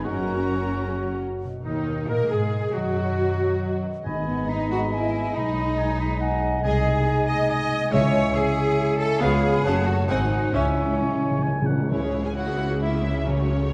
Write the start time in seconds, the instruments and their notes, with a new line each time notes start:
0.05 double bass section F#1, cello section F#2, harp F#2, viola section C#4 F#4, clarinet C#4, french horn section C#4 F#4, violin section A#4 A#5, oboe F#5, flute C#6
0.29 harp C#4
0.52 french horn section C#4, harp F#4
0.76 harp C#5
0.87 french horn section G#4
0.98 harp F#4, french horn section F#4
1.22 harp C#5
1.44 harp B2
1.65 double bass section D#2, viola section D#3, french horn section D#3, harp B3, oboe D#4, flute D#4, violin section D#4, cello section D#4, clarinet D#4
1.88 harp D#5
2.09 double bass section A#2, viola section A#3, french horn section A#3, oboe A#4, flute A#4, cello section A#4, clarinet A#4, violin section A#4, harp F#5
2.30 double bass section G#2, viola section G#3, french horn section G#3, oboe G#4, cello section G#4, flute G#4, violin section G#4, clarinet G#4
2.53 harp D#5
2.73 double bass section F#2, harp D#3, viola section F#3, french horn section F#3, oboe F#4, cello section F#4, flute F#4, violin section F#4, clarinet F#4
2.96 harp D#4
3.18 harp B4
3.40 harp D#6
3.61 harp D#5
3.84 harp B4
4.05 double bass section G#1, harp G#2, timpani G#2, viola section G#3, french horn section B3 D#4, clarinet D#5, violin section D#5 G#5, oboe G#5, flute B5
4.27 harp G#3, cello section B3
4.49 cello section D#4, clarinet D#5, harp D#5, flute A#5, oboe B5
4.71 cello section F#4, harp G#4
4.93 cello section E4, harp D#5, flute G#5
5.14 harp D#4, flute G#5
5.35 double bass section B1, harp B2, french horn section G#3 D#4, cello section D#4, clarinet D#5, oboe A#5, flute B5
5.57 harp G#3
5.78 harp D#5, oboe G#5, flute A#5
6.00 harp G#4, oboe B5
6.20 harp D#5, clarinet F#5, flute G#5, oboe A#5
6.42 harp D#4
6.63 double bass section C2, harp C3, french horn section G#3 D#4, viola section G#3, cello section G#4, clarinet D#5, violin section D#5 G#5, oboe G#5, flute G#5
6.86 harp G#3
7.28 harp G#4, cello section D#5
7.49 clarinet D#5, cello section D#5, oboe G#5, flute G#5
7.72 harp D#4
7.92 double bass section C#2, timpani C#3, harp C#3, viola section G#3, french horn section E4, clarinet C#5, cello section C#5, oboe E5, violin section E5 G#5, flute G#5
8.15 harp G#3
8.34 cello section G#4, harp C#5, clarinet C#5, oboe E5, flute G#5
8.99 cello section A4, harp C#5
9.21 double bass section C#2, harp C#3, viola section B3, french horn section B3 F4, cello section G#4, clarinet C#5, oboe F5, violin section F5 G#5, flute B5
9.43 harp F4 C#5
9.64 double bass section F#1, harp F#2, french horn section A3 F#4, viola section C#4, clarinet C#5, oboe F#5, violin section F#5 A5, flute A5
9.87 harp F#4 C#5, cello section F#4
10.08 double bass section G#1, harp G#2, french horn section G#3 F#4, viola section C4, cello section D#4, clarinet C5, oboe F#5, violin section F#5 G#5, flute G#5
10.31 harp F#4 C5
10.53 double bass section C#2, harp C#3, timpani C#3, french horn section G#3 E4, viola section C#4, cello section C#4, clarinet C#5, oboe E5, violin section E5 G#5, flute G#5
10.62 timpani C#3
10.70 timpani C#3
10.77 timpani C#3, harp G#3
10.85 timpani C#3
10.92 timpani C#3
10.98 timpani C#3, oboe C#5, harp C#5
11.08 timpani C#3
11.16 timpani C#3
11.22 timpani C#3, harp E5
11.31 timpani C#3
11.39 timpani C#3, oboe G#5
11.45 timpani C#3, harp G#4
11.54 timpani C#3
11.62 timpani C#3
11.66 timpani C#3, harp C#5, oboe F#5
11.78 timpani C#3
11.90 double bass section C#2, cello section C#3, harp C#3, timpani C#3, viola section G#3 E4, violin section C#4 C#5
12.01 viola section C#4 G#4
12.12 viola section G#3 E4, harp G#3
12.24 viola section C#4 G#4, violin section G#4 G#5
12.35 viola section G#3 E4, violin section F#4 F#5, harp C#5
12.46 viola section C#4 G#4
12.58 viola section G#3 E4, harp G#4
12.70 viola section C#4 G#4
12.80 viola section G#3 E4, violin section E4 E5, harp E5
12.92 viola section C#4 G#4
13.03 viola section G#3 E4, harp G#4
13.15 viola section C#4 G#4
13.26 harp C#3, timpani C#3, viola section F#3 C#4, violin section C#4 C#5
13.38 viola section A3 F#4
13.49 viola section F#3 C#4, harp A3
13.60 viola section A3 F#4